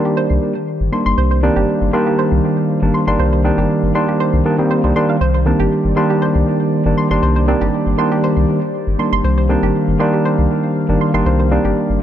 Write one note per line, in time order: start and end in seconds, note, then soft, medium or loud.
0.00 0.52 D#3 medium
0.00 12.03 D#3 medium
0.00 0.52 G3 medium
0.00 0.52 A#3 medium
0.00 12.03 A#3 medium
0.00 0.53 D4 loud
0.00 12.03 G4 medium
0.00 12.03 C5 medium
0.00 1.16 D5 medium
0.05 0.10 G4 medium
0.17 0.22 C5 loud
0.30 0.39 C2 medium
0.81 0.89 G1 medium
0.92 1.40 D#3 medium
0.92 1.40 G3 medium
0.92 1.40 A#3 medium
0.92 1.40 D4 medium
0.92 0.96 C6 medium
1.06 1.14 G1 medium
1.06 1.13 C6 loud
1.18 1.50 C2 loud
1.18 1.23 C5 loud
1.18 5.20 F5 medium
1.31 1.34 C5 medium
1.43 1.90 D#3 loud
1.43 1.90 G3 medium
1.43 1.91 A#3 medium
1.43 1.48 C4 medium
1.43 1.91 D4 loud
1.56 1.65 G1 medium
1.56 1.61 G4 loud
1.81 1.90 G1 loud
1.93 2.79 D#3 loud
1.93 2.79 G3 medium
1.93 2.79 A#3 medium
1.93 2.80 D4 loud
1.93 1.97 C6 medium
2.07 2.11 G4 medium
2.19 2.24 C5 loud
2.32 2.40 C2 medium
2.82 2.91 G1 medium
2.82 3.04 D#3 medium
2.82 3.04 G3 medium
2.82 3.04 A#3 medium
2.82 3.05 D4 medium
2.94 2.97 C6 medium
3.07 3.16 G1 medium
3.07 3.42 D#3 medium
3.07 3.42 G3 medium
3.07 3.42 A#3 medium
3.07 3.42 D4 loud
3.07 3.15 C6 loud
3.19 3.51 C2 medium
3.19 3.25 C5 loud
3.33 3.36 C5 medium
3.44 3.92 D#3 medium
3.44 3.92 G3 medium
3.44 3.92 A#3 medium
3.44 3.50 C4 medium
3.44 3.92 D4 loud
3.58 3.66 G1 loud
3.58 3.63 G4 loud
3.83 3.91 G1 medium
3.95 4.43 D#3 medium
3.95 4.43 G3 medium
3.95 4.43 A#3 medium
3.95 4.43 D4 loud
3.95 3.98 C6 medium
4.08 4.13 G4 medium
4.20 4.25 C5 loud
4.33 4.42 C2 medium
4.45 4.55 D#3 medium
4.45 4.56 G3 medium
4.45 4.56 A#3 medium
4.45 4.56 D4 loud
4.58 4.81 D#3 medium
4.58 4.81 G3 medium
4.58 4.81 A#3 medium
4.58 4.81 C4 loud
4.71 4.74 C5 medium
4.84 4.92 C2 medium
4.84 4.93 D#3 medium
4.84 4.93 G3 medium
4.84 4.93 A#3 medium
4.84 4.93 D4 loud
4.84 4.91 C5 medium
4.95 5.15 D#3 medium
4.95 5.15 G3 medium
4.95 5.15 A#3 medium
4.95 5.15 D4 loud
4.95 5.01 C6 loud
5.09 5.14 F5 medium
5.21 5.53 C2 loud
5.21 5.26 C5 loud
5.21 9.23 D5 medium
5.34 5.37 C5 medium
5.46 5.94 D#3 loud
5.46 5.94 G3 medium
5.46 5.94 A#3 medium
5.46 5.52 C4 medium
5.46 5.94 D4 loud
5.60 5.68 G1 medium
5.60 5.64 G4 loud
5.85 5.93 G1 medium
5.96 6.82 D#3 loud
5.96 6.82 G3 loud
5.96 6.83 A#3 medium
5.96 6.83 D4 loud
5.96 6.00 C6 medium
6.10 6.15 G4 medium
6.22 6.27 C5 loud
6.35 6.43 C2 medium
6.85 6.94 G1 medium
6.85 7.08 D#3 medium
6.85 7.08 G3 medium
6.85 7.08 A#3 medium
6.85 7.08 D4 medium
6.98 7.01 C6 medium
7.10 7.19 G1 medium
7.10 7.45 D#3 medium
7.10 7.45 G3 medium
7.10 7.45 A#3 medium
7.10 7.45 D4 loud
7.10 7.18 C6 loud
7.23 7.55 C2 loud
7.23 7.28 C5 loud
7.36 7.39 C5 medium
7.48 7.95 D#3 medium
7.48 7.95 G3 medium
7.48 7.96 A#3 medium
7.48 7.53 C4 medium
7.48 7.96 D4 loud
7.61 7.70 G1 loud
7.61 7.66 G4 loud
7.86 7.95 G1 medium
7.98 8.59 D#3 medium
7.98 8.59 G3 medium
7.98 8.59 A#3 medium
7.98 8.59 D4 loud
7.98 8.02 C6 medium
8.12 8.16 G4 medium
8.24 8.29 C5 loud
8.37 8.45 C2 medium
8.87 8.96 G1 medium
8.99 9.47 D#3 medium
8.99 9.47 G3 medium
8.99 9.47 A#3 medium
8.99 9.47 D4 medium
8.99 9.02 C6 medium
9.13 9.21 G1 medium
9.13 9.20 C6 loud
9.24 9.56 C2 loud
9.24 9.30 C5 loud
9.24 12.03 F5 medium
9.38 9.41 C5 medium
9.49 9.97 D#3 loud
9.49 9.97 G3 medium
9.49 9.97 A#3 medium
9.49 9.55 C4 medium
9.49 9.97 D4 loud
9.63 9.71 G1 loud
9.63 9.68 G4 loud
9.88 9.96 G1 loud
9.99 10.85 D#3 loud
9.99 10.86 G3 medium
9.99 10.86 A#3 medium
9.99 10.86 D4 loud
9.99 10.03 C6 medium
10.13 10.18 G4 medium
10.25 10.31 C5 loud
10.39 10.47 C2 medium
10.89 10.97 G1 loud
10.89 11.11 D#3 medium
10.89 11.11 G3 medium
10.89 11.11 A#3 medium
10.89 11.11 D4 medium
11.01 11.04 C6 medium
11.14 11.22 G1 medium
11.14 11.48 D#3 medium
11.14 11.48 G3 medium
11.14 11.49 A#3 medium
11.14 11.49 D4 loud
11.14 11.21 C6 loud
11.26 11.58 C2 loud
11.26 11.31 C5 loud
11.40 11.42 C5 medium
11.51 11.99 D#3 medium
11.51 11.99 G3 medium
11.51 11.99 A#3 medium
11.51 11.57 C4 medium
11.51 11.99 D4 loud
11.65 11.73 G1 medium
11.65 11.69 G4 loud
11.90 11.98 G1 medium